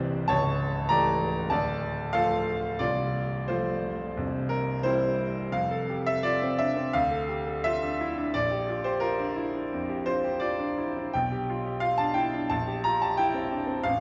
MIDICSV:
0, 0, Header, 1, 2, 480
1, 0, Start_track
1, 0, Key_signature, -1, "major"
1, 0, Tempo, 604839
1, 233, Time_signature, 4, 2, 24, 8
1, 1200, Tempo, 643087
1, 2160, Tempo, 684151
1, 4080, Tempo, 696056
1, 7440, Tempo, 736196
1, 7920, Tempo, 673401
1, 9957, End_track
2, 0, Start_track
2, 0, Title_t, "Grand piano"
2, 0, Program_c, 0, 0
2, 0, Control_c, 0, 64, 127
2, 0, Note_on_c, 0, 24, 62
2, 0, Note_on_c, 0, 36, 67
2, 0, Note_on_c, 0, 52, 55
2, 0, Note_on_c, 0, 60, 55
2, 0, Note_on_c, 0, 67, 63
2, 0, Note_on_c, 0, 72, 76
2, 0, Note_on_c, 0, 79, 94
2, 197, Note_off_c, 0, 24, 0
2, 197, Note_off_c, 0, 36, 0
2, 201, Note_off_c, 0, 52, 0
2, 202, Note_off_c, 0, 60, 0
2, 205, Note_off_c, 0, 67, 0
2, 220, Note_on_c, 0, 81, 113
2, 225, Note_on_c, 0, 37, 65
2, 227, Note_on_c, 0, 25, 59
2, 230, Note_on_c, 0, 73, 81
2, 247, Control_c, 0, 64, 0
2, 253, Note_off_c, 0, 72, 0
2, 255, Note_off_c, 0, 79, 0
2, 369, Control_c, 0, 64, 127
2, 678, Note_off_c, 0, 73, 0
2, 704, Note_off_c, 0, 81, 0
2, 705, Note_on_c, 0, 82, 110
2, 711, Note_on_c, 0, 52, 50
2, 712, Note_on_c, 0, 74, 75
2, 717, Note_on_c, 0, 57, 54
2, 718, Note_on_c, 0, 67, 54
2, 1166, Note_off_c, 0, 37, 0
2, 1167, Note_off_c, 0, 25, 0
2, 1168, Note_off_c, 0, 52, 0
2, 1168, Note_off_c, 0, 74, 0
2, 1171, Note_off_c, 0, 57, 0
2, 1171, Note_off_c, 0, 67, 0
2, 1189, Note_on_c, 0, 81, 92
2, 1196, Note_on_c, 0, 26, 53
2, 1196, Note_on_c, 0, 38, 59
2, 1197, Note_off_c, 0, 82, 0
2, 1201, Note_on_c, 0, 74, 75
2, 1210, Control_c, 0, 64, 0
2, 1341, Control_c, 0, 64, 127
2, 1640, Note_off_c, 0, 74, 0
2, 1660, Note_on_c, 0, 77, 108
2, 1665, Note_off_c, 0, 81, 0
2, 1672, Note_on_c, 0, 53, 50
2, 1672, Note_on_c, 0, 57, 50
2, 1672, Note_on_c, 0, 69, 83
2, 1677, Note_on_c, 0, 65, 53
2, 2129, Note_off_c, 0, 26, 0
2, 2129, Note_off_c, 0, 38, 0
2, 2131, Note_off_c, 0, 53, 0
2, 2131, Note_off_c, 0, 57, 0
2, 2131, Note_off_c, 0, 69, 0
2, 2133, Note_off_c, 0, 65, 0
2, 2154, Note_on_c, 0, 74, 88
2, 2155, Note_off_c, 0, 77, 0
2, 2160, Note_on_c, 0, 36, 53
2, 2161, Note_on_c, 0, 24, 48
2, 2163, Note_on_c, 0, 65, 69
2, 2172, Control_c, 0, 64, 0
2, 2294, Control_c, 0, 64, 127
2, 2618, Note_off_c, 0, 65, 0
2, 2637, Note_on_c, 0, 72, 72
2, 2642, Note_off_c, 0, 74, 0
2, 2645, Note_on_c, 0, 53, 47
2, 2645, Note_on_c, 0, 65, 50
2, 2651, Note_on_c, 0, 57, 41
2, 3099, Note_off_c, 0, 24, 0
2, 3099, Note_off_c, 0, 36, 0
2, 3099, Note_off_c, 0, 53, 0
2, 3102, Note_off_c, 0, 57, 0
2, 3122, Note_on_c, 0, 36, 51
2, 3126, Note_on_c, 0, 24, 49
2, 3140, Control_c, 0, 64, 0
2, 3232, Control_c, 0, 64, 127
2, 3348, Note_on_c, 0, 70, 79
2, 3577, Note_off_c, 0, 72, 0
2, 3588, Note_on_c, 0, 72, 83
2, 3591, Note_off_c, 0, 70, 0
2, 3597, Note_on_c, 0, 55, 45
2, 3601, Note_on_c, 0, 60, 49
2, 3603, Note_on_c, 0, 64, 53
2, 3808, Note_off_c, 0, 65, 0
2, 4050, Note_off_c, 0, 36, 0
2, 4052, Note_off_c, 0, 55, 0
2, 4053, Note_off_c, 0, 24, 0
2, 4053, Note_off_c, 0, 60, 0
2, 4054, Note_off_c, 0, 64, 0
2, 4069, Note_on_c, 0, 29, 53
2, 4071, Note_on_c, 0, 77, 91
2, 4075, Note_off_c, 0, 72, 0
2, 4077, Note_on_c, 0, 41, 61
2, 4095, Control_c, 0, 64, 0
2, 4201, Control_c, 0, 64, 127
2, 4202, Note_on_c, 0, 69, 57
2, 4328, Note_on_c, 0, 67, 46
2, 4399, Note_off_c, 0, 69, 0
2, 4444, Note_off_c, 0, 77, 0
2, 4446, Note_on_c, 0, 76, 99
2, 4450, Note_off_c, 0, 67, 0
2, 4450, Note_on_c, 0, 69, 46
2, 4560, Note_on_c, 0, 74, 103
2, 4568, Note_off_c, 0, 76, 0
2, 4571, Note_on_c, 0, 65, 52
2, 4642, Note_off_c, 0, 69, 0
2, 4693, Note_on_c, 0, 60, 53
2, 4762, Note_off_c, 0, 65, 0
2, 4805, Note_off_c, 0, 74, 0
2, 4805, Note_on_c, 0, 76, 88
2, 4808, Note_on_c, 0, 62, 45
2, 4883, Note_off_c, 0, 60, 0
2, 4928, Note_on_c, 0, 60, 48
2, 4929, Note_off_c, 0, 62, 0
2, 5018, Note_off_c, 0, 29, 0
2, 5022, Note_off_c, 0, 41, 0
2, 5045, Note_on_c, 0, 77, 103
2, 5048, Note_off_c, 0, 76, 0
2, 5050, Note_off_c, 0, 60, 0
2, 5051, Note_on_c, 0, 38, 59
2, 5063, Control_c, 0, 64, 0
2, 5167, Control_c, 0, 64, 127
2, 5167, Note_on_c, 0, 69, 52
2, 5288, Note_on_c, 0, 67, 43
2, 5364, Note_off_c, 0, 69, 0
2, 5412, Note_off_c, 0, 67, 0
2, 5415, Note_on_c, 0, 69, 47
2, 5532, Note_on_c, 0, 76, 107
2, 5533, Note_off_c, 0, 77, 0
2, 5543, Note_on_c, 0, 65, 59
2, 5608, Note_off_c, 0, 69, 0
2, 5658, Note_on_c, 0, 62, 44
2, 5731, Note_off_c, 0, 65, 0
2, 5787, Note_on_c, 0, 64, 46
2, 5847, Note_off_c, 0, 62, 0
2, 5899, Note_off_c, 0, 64, 0
2, 5901, Note_on_c, 0, 62, 49
2, 5983, Note_off_c, 0, 38, 0
2, 6008, Note_off_c, 0, 76, 0
2, 6014, Note_off_c, 0, 62, 0
2, 6014, Note_on_c, 0, 74, 98
2, 6021, Control_c, 0, 64, 0
2, 6022, Note_on_c, 0, 34, 60
2, 6132, Note_on_c, 0, 67, 46
2, 6150, Control_c, 0, 64, 127
2, 6254, Note_on_c, 0, 65, 41
2, 6318, Note_off_c, 0, 67, 0
2, 6361, Note_on_c, 0, 72, 83
2, 6364, Note_off_c, 0, 74, 0
2, 6367, Note_off_c, 0, 65, 0
2, 6367, Note_on_c, 0, 67, 52
2, 6470, Note_on_c, 0, 70, 83
2, 6479, Note_on_c, 0, 65, 53
2, 6481, Note_off_c, 0, 72, 0
2, 6556, Note_off_c, 0, 67, 0
2, 6599, Note_on_c, 0, 62, 52
2, 6672, Note_off_c, 0, 65, 0
2, 6718, Note_on_c, 0, 64, 44
2, 6793, Note_off_c, 0, 62, 0
2, 6840, Note_off_c, 0, 64, 0
2, 6850, Note_on_c, 0, 62, 42
2, 6940, Note_off_c, 0, 34, 0
2, 6956, Note_off_c, 0, 70, 0
2, 6970, Note_on_c, 0, 41, 43
2, 7038, Note_off_c, 0, 62, 0
2, 7085, Note_on_c, 0, 67, 47
2, 7158, Note_off_c, 0, 41, 0
2, 7199, Note_on_c, 0, 72, 86
2, 7206, Note_on_c, 0, 65, 44
2, 7274, Note_off_c, 0, 67, 0
2, 7323, Note_off_c, 0, 65, 0
2, 7325, Note_on_c, 0, 67, 49
2, 7433, Note_on_c, 0, 74, 78
2, 7440, Note_off_c, 0, 72, 0
2, 7443, Note_on_c, 0, 65, 54
2, 7512, Note_off_c, 0, 67, 0
2, 7558, Note_on_c, 0, 62, 49
2, 7631, Note_off_c, 0, 65, 0
2, 7682, Note_on_c, 0, 64, 38
2, 7753, Note_off_c, 0, 62, 0
2, 7803, Note_off_c, 0, 64, 0
2, 7807, Note_on_c, 0, 62, 46
2, 7914, Note_on_c, 0, 79, 83
2, 7917, Note_off_c, 0, 74, 0
2, 7922, Note_on_c, 0, 35, 59
2, 7924, Note_off_c, 0, 62, 0
2, 7935, Control_c, 0, 64, 0
2, 8044, Note_on_c, 0, 67, 52
2, 8047, Control_c, 0, 64, 127
2, 8172, Note_on_c, 0, 65, 43
2, 8241, Note_off_c, 0, 67, 0
2, 8288, Note_on_c, 0, 67, 48
2, 8291, Note_off_c, 0, 65, 0
2, 8390, Note_on_c, 0, 77, 96
2, 8402, Note_on_c, 0, 65, 50
2, 8406, Note_off_c, 0, 79, 0
2, 8481, Note_off_c, 0, 67, 0
2, 8514, Note_on_c, 0, 81, 99
2, 8520, Note_off_c, 0, 77, 0
2, 8524, Note_on_c, 0, 62, 52
2, 8598, Note_off_c, 0, 65, 0
2, 8630, Note_on_c, 0, 79, 92
2, 8641, Note_on_c, 0, 64, 41
2, 8642, Note_off_c, 0, 81, 0
2, 8720, Note_off_c, 0, 62, 0
2, 8766, Note_off_c, 0, 64, 0
2, 8767, Note_on_c, 0, 62, 42
2, 8863, Note_off_c, 0, 35, 0
2, 8881, Note_off_c, 0, 79, 0
2, 8883, Note_on_c, 0, 81, 93
2, 8889, Note_on_c, 0, 34, 63
2, 8890, Note_off_c, 0, 62, 0
2, 8904, Control_c, 0, 64, 0
2, 9012, Note_on_c, 0, 67, 51
2, 9021, Control_c, 0, 64, 127
2, 9127, Note_off_c, 0, 81, 0
2, 9128, Note_on_c, 0, 82, 100
2, 9138, Note_on_c, 0, 65, 46
2, 9202, Note_off_c, 0, 67, 0
2, 9248, Note_off_c, 0, 82, 0
2, 9253, Note_off_c, 0, 65, 0
2, 9255, Note_on_c, 0, 81, 91
2, 9259, Note_on_c, 0, 67, 54
2, 9368, Note_on_c, 0, 79, 101
2, 9370, Note_off_c, 0, 81, 0
2, 9378, Note_on_c, 0, 64, 56
2, 9442, Note_off_c, 0, 67, 0
2, 9487, Note_on_c, 0, 60, 46
2, 9561, Note_off_c, 0, 64, 0
2, 9610, Note_on_c, 0, 62, 40
2, 9675, Note_off_c, 0, 60, 0
2, 9721, Note_on_c, 0, 60, 50
2, 9725, Note_off_c, 0, 62, 0
2, 9812, Note_off_c, 0, 34, 0
2, 9838, Note_on_c, 0, 77, 94
2, 9841, Note_off_c, 0, 60, 0
2, 9842, Note_off_c, 0, 79, 0
2, 9847, Note_on_c, 0, 33, 57
2, 9854, Control_c, 0, 64, 0
2, 9957, Note_off_c, 0, 33, 0
2, 9957, Note_off_c, 0, 77, 0
2, 9957, End_track
0, 0, End_of_file